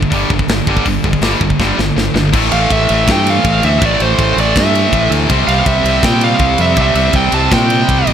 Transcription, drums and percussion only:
0.03 kick medium
0.12 kick medium
0.12 open hi-hat soft
0.30 kick medium
0.39 kick medium
0.49 snare medium
0.49 open hi-hat soft
0.67 kick medium
0.77 kick medium
0.86 kick loud
0.86 open hi-hat medium
1.04 kick medium
1.13 kick medium
1.22 snare loud
1.22 open hi-hat medium
1.41 kick medium
1.50 kick medium
1.60 kick medium
1.60 snare medium
1.79 snare medium
1.98 snare medium
2.16 snare medium
2.33 kick loud
2.33 crash loud
2.52 ride medium
2.71 kick medium
2.71 ride loud
2.89 ride medium
3.07 kick loud
3.07 snare loud
3.07 ride loud
3.27 ride medium
3.44 kick medium
3.44 ride loud
3.63 ride medium
3.82 kick loud
3.82 ride loud
4.00 ride medium
4.19 kick medium
4.19 ride loud
4.38 ride medium
4.56 kick loud
4.56 snare loud
4.56 ride loud
4.75 ride medium
4.93 kick medium
4.93 ride medium
5.12 ride medium
5.30 kick loud
5.30 ride loud
5.48 ride medium
5.66 kick medium
5.66 ride loud
5.86 ride medium
6.03 kick loud
6.03 snare loud
6.03 ride loud
6.21 ride medium
6.39 kick medium
6.39 ride medium
6.58 ride medium
6.77 kick loud
6.77 ride loud
6.95 ride medium
7.13 kick medium
7.13 ride loud
7.32 ride medium
7.51 kick loud
7.51 snare loud
7.51 ride medium
7.70 ride medium
7.89 kick medium
7.89 ride loud
8.07 ride medium

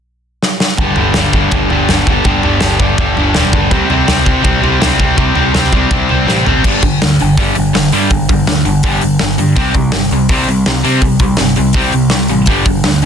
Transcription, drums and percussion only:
0.42 snare medium
0.60 snare medium
0.77 kick loud
0.77 floor tom medium
0.96 floor tom medium
1.14 snare medium
1.14 floor tom medium
1.33 kick medium
1.33 floor tom medium
1.51 kick loud
1.51 floor tom medium
1.70 floor tom medium
1.89 snare medium
1.89 floor tom medium
2.07 kick medium
2.07 floor tom medium
2.24 kick medium
2.24 floor tom medium
2.43 floor tom medium
2.60 snare medium
2.60 floor tom medium
2.79 kick medium
2.79 floor tom medium
2.98 kick loud
2.98 floor tom medium
3.17 floor tom medium
3.34 snare medium
3.34 floor tom medium
3.53 kick medium
3.53 floor tom medium
3.71 kick medium
3.71 floor tom medium
3.90 floor tom medium
4.08 snare loud
4.08 floor tom medium
4.26 kick medium
4.26 floor tom medium
4.44 kick loud
4.44 floor tom medium
4.64 floor tom medium
4.82 snare loud
4.82 floor tom medium
4.99 kick medium
4.99 floor tom medium
5.18 kick medium
5.18 floor tom medium
5.35 floor tom medium
5.54 snare medium
5.54 floor tom medium
5.73 kick medium
5.73 floor tom medium
5.91 kick loud
5.91 floor tom medium
6.09 floor tom medium
6.28 snare soft
6.46 floor tom medium
6.64 kick loud
6.64 crash medium
6.83 kick medium
6.83 open hi-hat medium
7.02 snare loud
7.02 open hi-hat medium
7.20 open hi-hat medium
7.37 kick loud
7.37 open hi-hat medium
7.55 open hi-hat medium
7.75 snare medium
7.75 open hi-hat medium
7.92 open hi-hat medium
8.10 kick medium
8.10 open hi-hat medium
8.29 kick medium
8.29 open hi-hat medium
8.47 snare loud
8.47 open hi-hat medium
8.65 open hi-hat medium
8.83 kick loud
8.83 open hi-hat medium
9.01 open hi-hat medium
9.19 snare loud
9.19 open hi-hat medium
9.38 open hi-hat medium
9.56 kick medium
9.56 open hi-hat medium
9.74 kick medium
9.74 open hi-hat medium
9.92 snare loud
9.92 open hi-hat medium
10.11 open hi-hat medium
10.29 kick loud
10.29 open hi-hat medium
10.48 open hi-hat medium
10.66 snare loud
10.66 open hi-hat medium
10.84 open hi-hat medium
11.02 kick medium
11.02 open hi-hat medium
11.19 kick medium
11.19 open hi-hat medium
11.37 snare medium
11.37 open hi-hat medium
11.56 open hi-hat medium
11.73 kick loud
11.73 open hi-hat medium
11.92 open hi-hat soft
12.10 snare medium
12.10 open hi-hat medium
12.28 open hi-hat soft
12.46 kick medium
12.46 open hi-hat medium
12.65 kick medium
12.65 open hi-hat medium
12.84 snare loud
12.84 open hi-hat medium
13.02 open hi-hat soft

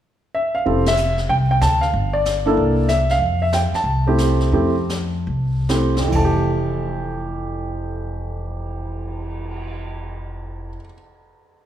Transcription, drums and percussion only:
0.66 brush sweep soft
0.86 snare medium
0.86 ride medium
0.97 hi-hat pedal soft
1.18 snare soft
1.30 brush sweep soft
1.61 snare soft
1.61 hi-hat pedal medium
1.82 snare soft
1.94 brush sweep soft
2.25 snare medium
2.25 hi-hat pedal medium
2.58 brush sweep soft
2.88 snare soft
2.88 hi-hat pedal soft
3.09 snare soft
3.21 brush sweep soft
3.52 snare medium
3.52 hi-hat pedal medium
3.74 snare soft
3.86 brush sweep soft
4.18 snare medium
4.18 hi-hat pedal medium
4.40 snare soft
4.53 brush sweep soft
4.89 snare medium
4.89 hi-hat pedal soft
5.28 brush sweep soft
5.69 snare medium
5.69 hi-hat pedal soft
5.97 snare soft
6.12 kick soft
6.12 crash medium
6.41 cymbal swell soft

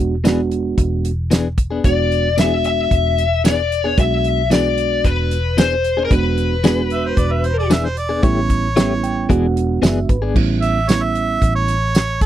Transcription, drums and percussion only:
0.25 snare loud
0.25 closed hi-hat medium
0.25 tambourine loud
0.51 closed hi-hat medium
0.78 kick medium
0.78 closed hi-hat medium
1.05 closed hi-hat medium
1.31 snare loud
1.31 closed hi-hat medium
1.31 tambourine loud
1.58 kick medium
1.58 closed hi-hat medium
1.84 kick loud
1.84 closed hi-hat medium
2.12 closed hi-hat medium
2.38 snare loud
2.38 closed hi-hat medium
2.38 tambourine loud
2.64 closed hi-hat medium
2.91 kick medium
2.91 closed hi-hat medium
3.18 closed hi-hat medium
3.45 snare loud
3.45 closed hi-hat medium
3.45 tambourine loud
3.72 closed hi-hat medium
3.98 kick loud
3.98 closed hi-hat medium
4.24 closed hi-hat medium
4.51 snare loud
4.51 closed hi-hat medium
4.51 tambourine medium
4.78 closed hi-hat medium
5.04 kick medium
5.04 closed hi-hat medium
5.31 closed hi-hat medium
5.58 snare loud
5.58 closed hi-hat medium
5.58 tambourine loud
5.84 closed hi-hat medium
6.11 kick loud
6.11 closed hi-hat medium
6.38 closed hi-hat medium
6.64 snare medium
6.64 closed hi-hat medium
6.64 tambourine medium
6.90 closed hi-hat medium
7.17 kick medium
7.17 closed hi-hat medium
7.44 closed hi-hat medium
7.71 snare loud
7.71 closed hi-hat medium
7.71 tambourine loud
7.86 snare soft
7.97 closed hi-hat medium
8.23 kick loud
8.23 closed hi-hat medium
8.50 kick medium
8.50 closed hi-hat medium
8.77 snare loud
8.77 closed hi-hat medium
8.77 tambourine loud
9.04 closed hi-hat medium
9.30 kick medium
9.30 closed hi-hat medium
9.57 closed hi-hat medium
9.83 snare loud
9.83 closed hi-hat medium
9.83 tambourine loud
10.09 kick medium
10.09 closed hi-hat medium
10.36 kick medium
10.36 crash medium
10.62 closed hi-hat medium
10.89 snare loud
10.89 closed hi-hat medium
10.89 tambourine loud
11.15 closed hi-hat medium
11.42 kick medium
11.42 closed hi-hat medium
11.68 closed hi-hat medium
11.95 snare loud
11.95 closed hi-hat medium
11.95 tambourine loud
12.21 kick medium
12.21 closed hi-hat medium

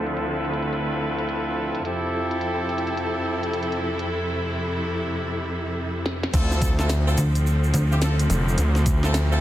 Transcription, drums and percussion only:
0.07 closed hi-hat soft
0.17 closed hi-hat medium
0.45 closed hi-hat soft
0.53 closed hi-hat medium
0.62 closed hi-hat soft
0.73 closed hi-hat medium
1.19 closed hi-hat soft
1.29 closed hi-hat medium
1.75 closed hi-hat soft
1.85 closed hi-hat medium
2.31 closed hi-hat soft
2.41 closed hi-hat medium
2.69 closed hi-hat soft
2.78 closed hi-hat medium
2.87 closed hi-hat soft
2.97 closed hi-hat medium
3.43 closed hi-hat soft
3.53 closed hi-hat medium
3.63 closed hi-hat soft
3.72 closed hi-hat soft
3.99 closed hi-hat soft
6.06 snare medium
6.23 snare medium
6.34 kick loud
6.34 closed hi-hat medium
6.34 crash loud
6.34 shaker medium
6.51 snare soft
6.51 shaker soft
6.62 kick loud
6.62 closed hi-hat medium
6.62 shaker medium
6.79 snare medium
6.79 shaker soft
6.90 snare loud
6.90 closed hi-hat medium
6.90 shaker medium
7.08 shaker soft
7.18 closed hi-hat medium
7.18 shaker medium
7.35 closed hi-hat soft
7.35 shaker soft
7.47 shaker medium
7.64 shaker soft
7.74 closed hi-hat medium
7.74 shaker medium
7.92 shaker soft
8.02 snare loud
8.02 closed hi-hat medium
8.02 shaker medium
8.19 closed hi-hat medium
8.19 shaker soft
8.30 closed hi-hat medium
8.30 shaker medium
8.48 shaker soft
8.58 closed hi-hat medium
8.58 shaker medium
8.76 snare soft
8.76 shaker soft
8.86 kick loud
8.86 closed hi-hat medium
8.86 shaker loud
9.04 snare medium
9.04 shaker soft
9.14 snare loud
9.14 closed hi-hat medium
9.14 shaker medium
9.32 shaker soft

